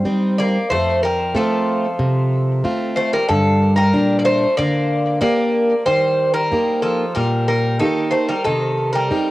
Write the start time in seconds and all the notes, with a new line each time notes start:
Already playing: G3 C5
0.05 G3 C4 D#4
0.38 A#3 D5
0.70 F2 A3 C5
1.03 G3 A#4
1.35 F3 A3 C4 F4 A4
1.99 C3
2.64 A3 C4 F4
2.96 A3 C5
3.13 G3 A#4
3.28 G2 D3 A4
3.76 G3 A#4
3.93 A#2 D4 G4
4.19 A#3 D5
4.25 A3 C5
4.57 D3 A#3 D5
5.21 A#3 D4 G4 D5
5.86 D#3 G3 C5
6.34 G3 A#4
6.52 A#3 D#4 G4
6.82 F3 A4
7.15 A#2 G3 A#4
7.48 G3 A#4
7.79 D#3 A#3 D#4 G4 A4
8.11 A3 C5
8.29 G3 A#4
8.44 C3 D#3 A4
8.93 G3 A#4
9.11 C4 D#4 G4